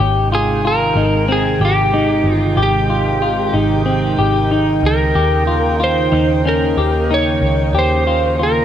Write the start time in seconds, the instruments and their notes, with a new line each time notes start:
0.00 picked electric bass G#1, analog synth pad C3 D#3 G#3 D#4 G5, clean electric guitar G4
0.32 clean electric guitar F4, electric slide guitar G#4
0.65 clean electric guitar F4, electric slide guitar A#4
0.96 picked electric bass G#1, clean electric guitar D#4
1.28 clean electric guitar C4, electric slide guitar G#4
1.60 picked electric bass G#1, clean electric guitar G4
1.65 electric slide guitar G4
1.94 clean electric guitar D#4
2.24 picked electric bass G1
2.34 electric slide guitar F4
2.57 picked electric bass G#1, clean electric guitar G4
2.63 electric slide guitar G4
2.90 clean electric guitar F4
3.22 clean electric guitar F4
3.54 picked electric bass G#1, clean electric guitar D#4
3.86 clean electric guitar C4
4.19 picked electric bass G#1, clean electric guitar G4
4.51 clean electric guitar D#4
4.83 picked electric bass C#2, electric slide guitar A#4
5.15 picked electric bass D#2, analog synth pad C#3 A#3, clean electric guitar G4
5.47 clean electric guitar F4
5.80 clean electric guitar F4, electric slide guitar C5
6.12 picked electric bass D#2, clean electric guitar D#4
6.45 clean electric guitar C#4, electric slide guitar A#4
6.77 picked electric bass D#2, clean electric guitar G4
7.11 clean electric guitar D#4, electric slide guitar C#5
7.42 picked electric bass C#2
7.73 picked electric bass D#2, analog synth pad C#4, clean electric guitar G4
7.79 electric slide guitar C5
8.07 clean electric guitar F4
8.39 clean electric guitar F4
8.43 electric slide guitar A#4